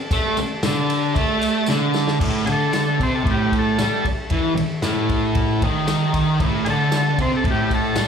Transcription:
Already playing: A4 D5 A5
0.11 A3, kick, ride, tambourine
0.37 muted distorted electric guitar stroke, ride, tambourine
0.63 D3, snare, ride, tambourine
0.90 ride, tambourine
1.15 A3, kick, ride, tambourine
1.41 ride, tambourine
1.66 D3, snare, tambourine
1.94 snare, tambourine
2.07 snare
2.20 A2 A4 C#5 E5, kick, crash
2.46 D3 G#4, ride
2.52 A4
2.73 snare, ride, tambourine
3.00 C3 C5, kick, ride
3.16 A4
3.24 A2, kick, ride
3.31 G4
3.52 kick, ride
3.59 A4
3.79 G3, snare, ride, tambourine
4.05 muted distorted electric guitar stroke, kick, ride
4.30 E3, kick, ride
4.56 muted distorted electric guitar stroke, ride
4.82 A2, snare, ride, tambourine
5.09 kick, ride
5.35 kick, ride
5.62 D#3, kick, ride
5.87 snare, ride, tambourine
6.14 kick, ride
6.39 A2 A4 C#5 E5, kick, ride
6.65 D3 G#4, ride
6.70 A4
6.92 snare, ride, tambourine
7.18 C3 C5, kick, ride
7.37 A4
7.44 A2, kick, ride
7.51 G4
7.71 kick, ride
7.75 A4
7.95 G3, snare, ride, tambourine

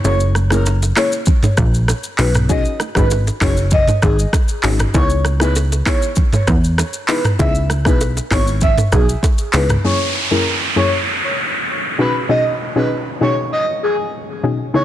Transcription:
0.04 F#1 A#3 C#4 E4 G#4 C#5, low conga, shaker
0.20 shaker
0.35 cross-stick, low bongo, shaker
0.50 A#3 C#4 E4 G#4 A#4, cross-stick, low bongo, shaker
0.66 high bongo, shaker
0.83 high bongo, shaker
0.96 A#3 C#4 E4 G#4 C#5, cross-stick, clap, open hi-hat, shaker
1.12 shaker
1.26 kick, low conga, shaker
1.43 mid tom, high bongo, low bongo, shaker
1.57 A#1, kick, cross-stick, low bongo, low conga, shaker
1.74 shaker
1.88 cross-stick, high bongo, shaker
2.03 shaker
2.18 B1 C#4 D#4 F#4 G#4 B4, clap, open hi-hat
2.35 cross-stick, mid tom, shaker
2.49 C#4 D#4 F#4 G#4 D#5, kick, low conga, shaker
2.65 shaker
2.80 cross-stick, low bongo, shaker
2.95 G#1 C#4 D#4 F#4 G#4 B4, kick, cross-stick, low bongo, shaker
3.11 high bongo, shaker
3.27 high bongo, shaker
3.41 F#1 C#4 D#4 F#4 G#4 C#5, kick, cross-stick, clap, open hi-hat, shaker
3.57 shaker
3.71 D#5, kick, low conga, shaker
3.87 mid tom, high bongo, low bongo, shaker
4.02 G#1 G#4, kick, cross-stick, low bongo, low conga, shaker
4.19 shaker
4.33 kick, cross-stick, high bongo, shaker
4.48 shaker
4.63 G#1 C#4 D#4 F#4 G#4, clap, open hi-hat
4.79 cross-stick, mid tom, shaker
4.94 C#2 B3 D#4 E4 G#4 C#5, kick, low conga, shaker
5.10 shaker
5.25 cross-stick, low bongo, shaker
5.40 B3 D#4 E4 G#4 B4, cross-stick, low bongo, shaker
5.56 high bongo, shaker
5.72 high bongo, shaker
5.86 B3 D#4 E4 G#4 C#5, kick, cross-stick, clap, open hi-hat, shaker
6.02 shaker
6.16 kick, low conga, shaker
6.33 mid tom, high bongo, low bongo, shaker
6.47 E2, kick, cross-stick, low bongo, low conga, shaker
6.64 shaker
6.78 cross-stick, high bongo, shaker
6.93 shaker
7.08 B3 D#4 E4 G#4 B4, clap, open hi-hat
7.25 cross-stick, mid tom, shaker
7.39 C#2 B3 D#4 E4 G#4 E5, kick, low conga, shaker
7.55 shaker
7.70 cross-stick, low bongo, shaker
7.85 B1 B3 D#4 E4 G#4 B4, kick, cross-stick, low bongo, shaker
8.01 high bongo, shaker
8.17 high bongo, shaker
8.31 G#1 B3 D#4 E4 G#4 C#5, kick, cross-stick, clap, open hi-hat, shaker
8.47 shaker
8.61 E5, kick, low conga, shaker
8.78 mid tom, high bongo, low bongo, shaker
8.92 B1 G#4, kick, cross-stick, low bongo, low conga, shaker
9.09 shaker
9.23 kick, high bongo, shaker
9.38 shaker
9.53 C#2 B3 D#4 E4 G#4 B4, clap, open hi-hat, shaker
9.69 cross-stick, mid tom, shaker
9.84 F#2 A#3 C#4 E4 G#4 C#5, downlifter
10.31 F#2 A#3 C#4 E4 G#4 A#4
10.76 F#2 A#3 C#4 E4 G#4 C#5
11.98 B2 C#4 D#4 F#4 G#4 B4
12.29 B2 C#4 D#4 F#4 G#4 D#5
12.75 B2 C#4 D#4 F#4 G#4 B4
13.21 B2 C#4 D#4 F#4 G#4 C#5
13.52 D#5
13.83 G#4
14.43 B2 C#4 D#4 F#4 G#4
14.74 C#3 B3 D#4 E4 G#4 C#5

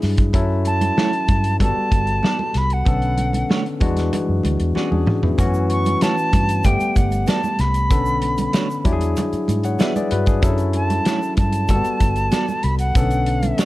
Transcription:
Already playing: F#3 D4 E4 G#4
0.02 G2, snare, open hi-hat
0.18 kick, closed hi-hat
0.33 F#2 F#3 C#4 E4 A4, kick, closed hi-hat, muted conga, low conga
0.65 A5, closed hi-hat, muted conga
0.81 closed hi-hat, high conga
0.97 A3 E4 F#4 C#5, snare, muted conga
1.13 closed hi-hat
1.28 G2, kick, closed hi-hat, high conga
1.44 closed hi-hat
1.60 G1 G3 B3 F#4 A4 A5, kick, closed hi-hat, muted conga, high conga, low conga
1.91 G1, kick, closed hi-hat, muted conga, high conga
2.07 closed hi-hat
2.23 B3 F#4 A4 D5, snare, muted conga
2.39 high conga
2.54 C2 B5, snare, closed hi-hat
2.70 F#5, closed hi-hat
2.85 B1 D3 B3 C#4 A4, kick, closed hi-hat, low conga
3.02 closed hi-hat
3.17 closed hi-hat, high conga
3.33 closed hi-hat, high conga
3.49 A3 D4 F#4 C#5, snare, muted conga
3.66 closed hi-hat
3.80 E2 E3 G#3 D4 F#4, kick, closed hi-hat, muted conga, high conga
3.97 snare, closed hi-hat
4.13 closed hi-hat, muted conga, high conga, low conga
4.29 F#2
4.43 D2, closed hi-hat, high conga
4.60 E2, closed hi-hat
4.75 B3 C#4 F#4 G#4 D5, muted fingered electric bass stroke, snare, muted conga
4.91 E2 D4 G#4, high conga
5.07 E3, mid tom, muted conga
5.23 B3 E4, floor tom
5.38 F#2 E3 A3 C#4 F#4, kick, closed hi-hat, muted conga, low conga, shaker
5.54 shaker
5.70 C#6, closed hi-hat, muted conga
5.85 closed hi-hat, high conga, shaker
6.01 A3 E4 F#4 C#5 A5, snare, closed hi-hat, shaker
6.18 shaker
6.33 G2, kick, closed hi-hat, high conga, shaker
6.49 closed hi-hat, shaker
6.64 G1 G3 A3 B3 G4 G5, kick, closed hi-hat, high conga, low conga, shaker
6.80 muted fingered electric bass stroke, closed hi-hat, shaker
6.96 G1 F#5, kick, closed hi-hat, muted conga, high conga, shaker
7.12 closed hi-hat, shaker
7.27 B3 F#4 A4 D5 A5, snare, closed hi-hat, muted conga, shaker
7.44 high conga, shaker
7.59 C2 B5, snare, closed hi-hat, muted conga
7.74 closed hi-hat, shaker
7.90 B1 D3 B3 C#4 A4, kick, closed hi-hat, muted conga, low conga, shaker
8.06 shaker
8.22 closed hi-hat, muted conga
8.37 closed hi-hat, high conga, shaker
8.53 A3 D4 F#4 C#5, snare, closed hi-hat, muted conga, shaker
8.70 shaker
8.84 E2 F#3 D4 E4 G4, kick, closed hi-hat, muted conga, high conga, shaker
8.93 G#4
9.01 closed hi-hat, shaker
9.16 closed hi-hat, high conga, low conga, shaker
9.33 muted fingered electric bass stroke, closed hi-hat, shaker
9.48 G#2, closed hi-hat, muted conga, high conga, shaker
9.64 C#5 F#5, closed hi-hat, shaker
9.79 B3 F#4 G#4 B4 D5 E5, snare, closed hi-hat, muted conga, shaker
9.96 G#4 D5, closed hi-hat, high conga, shaker
10.11 G2 F#4 B4, closed hi-hat
10.26 D4 G#4, kick, closed hi-hat, shaker
10.42 F#2 F#3 C#4 E4 A4, kick, closed hi-hat, muted conga, low conga, shaker
10.58 closed hi-hat, shaker
10.73 A5, closed hi-hat, muted conga
10.90 closed hi-hat, high conga, shaker
11.05 A3 E4 F#4 C#5, snare, closed hi-hat, shaker
11.22 shaker
11.37 G2 A5, kick, closed hi-hat, muted conga, high conga, shaker
11.53 closed hi-hat, shaker
11.68 G1 G3 A#3 F#4 A4, kick, closed hi-hat, muted conga, high conga, low conga, shaker
11.76 B3
11.84 closed hi-hat, shaker
12.00 G1, kick, closed hi-hat, high conga, shaker
12.16 closed hi-hat, shaker
12.31 B3 F#4 A4 D5, snare, closed hi-hat, muted conga, shaker
12.48 high conga, shaker
12.63 C2 B5, closed hi-hat, muted conga
12.79 F#5, closed hi-hat, shaker
12.95 B1 C#3 B3 C#4 A4, kick, closed hi-hat, muted conga, low conga, shaker
13.02 D3
13.11 closed hi-hat, shaker
13.26 closed hi-hat
13.42 closed hi-hat, high conga, shaker
13.58 A3 D4 F#4 C#5, snare, closed hi-hat, shaker

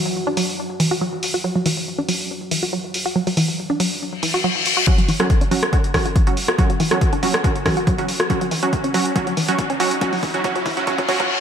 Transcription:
Already playing: F#3 F#4
0.27 D4
0.37 F#3, open hi-hat
0.80 E3, open hi-hat
0.91 F#4
1.01 F#3
1.23 open hi-hat
1.34 F#4
1.44 F#3
1.56 F#3
1.66 E3, open hi-hat
1.98 D4
2.09 F#3, open hi-hat
2.51 E3, open hi-hat
2.63 F#4
2.73 F#3
2.94 open hi-hat
3.06 F#4
3.16 F#3
3.27 F#3, open hi-hat
3.37 E3, open hi-hat
3.70 D4
3.80 F#3, open hi-hat
4.01 reverse cymbal
4.23 E3, open hi-hat
4.34 F#4
4.44 F#3
4.66 open hi-hat
4.77 F#4
4.87 F#3 C#4 F#4, kick, closed hi-hat, riser
4.98 F#3, closed hi-hat
5.08 E3, open hi-hat
5.20 F#3 C#4 F#4, cross-stick, closed hi-hat
5.30 kick, closed hi-hat
5.41 D4, closed hi-hat
5.51 F#3 C#4 F#4, open hi-hat
5.63 cross-stick, closed hi-hat
5.73 F#3 C#4 F#4, kick, closed hi-hat
5.84 closed hi-hat
5.94 E3 F#3 C#4 F#4, kick, cross-stick, open hi-hat
6.05 F#4, closed hi-hat
6.16 F#3, kick, closed hi-hat
6.27 F#3 C#4 F#4, closed hi-hat
6.37 open hi-hat
6.48 F#4, cross-stick
6.58 F#3 C#4 F#4, kick, closed hi-hat
6.70 F#3, closed hi-hat
6.80 E3, open hi-hat
6.91 F#3 C#4 F#4, cross-stick, closed hi-hat
7.01 kick, closed hi-hat
7.13 D4, closed hi-hat
7.23 F#3 C#4 F#4, open hi-hat
7.34 cross-stick
7.44 F#3 C#4 F#4, kick, closed hi-hat
7.56 closed hi-hat
7.66 E3 F#3 C#4 F#4, kick, cross-stick, open hi-hat
7.77 F#4, closed hi-hat
7.87 F#3, kick, closed hi-hat
7.98 F#3 C#4 F#4, closed hi-hat
8.08 open hi-hat
8.20 F#4, cross-stick, closed hi-hat
8.30 F#3 C#4 F#4, kick, closed hi-hat
8.41 F#3, closed hi-hat
8.51 E3, open hi-hat
8.63 F#3 C#4 F#4, closed hi-hat
8.73 kick, closed hi-hat
8.84 C#4, closed hi-hat
8.94 F#3 C#4 F#4, open hi-hat
9.06 closed hi-hat
9.16 F#3 C#4 F#4, kick, closed hi-hat
9.27 F#3, closed hi-hat
9.37 E3, open hi-hat
9.48 F#3 C#4 F#4, closed hi-hat
9.59 kick, closed hi-hat
9.70 C#4, closed hi-hat
9.80 F#3 C#4 F#4, open hi-hat
9.91 closed hi-hat
10.01 F#3 C#4 F#4, kick, closed hi-hat
10.13 F#3, open hi-hat
10.23 E3, kick, open hi-hat
10.34 F#3 C#4 F#4, closed hi-hat
10.44 F#3 C#4 F#4, kick, closed hi-hat
10.56 F#3, closed hi-hat
10.66 E3, kick, open hi-hat
10.77 F#3 C#4 F#4, closed hi-hat
10.87 F#3 C#4 F#4, kick, closed hi-hat, reverse cymbal
10.98 F#3, kick, closed hi-hat
11.08 F#3 C#4 F#4, kick, open hi-hat
11.20 F#3, kick, closed hi-hat

